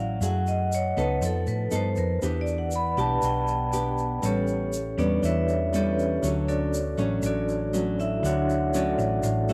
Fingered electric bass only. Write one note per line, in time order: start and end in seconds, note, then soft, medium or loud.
0.00 0.18 A1 medium
0.21 0.93 F#2 medium
0.97 1.21 C#2 medium
1.21 1.45 F2 medium
1.47 1.70 A2 medium
1.72 1.95 G2 medium
1.97 2.20 F2 medium
2.22 2.94 E2 medium
2.97 3.21 B1 medium
3.22 4.19 B1 medium
4.23 4.94 A1 medium
4.97 5.21 E2 medium
5.23 6.19 E2 medium
6.23 6.94 D2 medium
6.98 7.21 A1 medium
7.23 8.19 A1 medium
8.23 8.94 D2 medium
8.98 9.22 A1 loud
9.23 9.53 A1 loud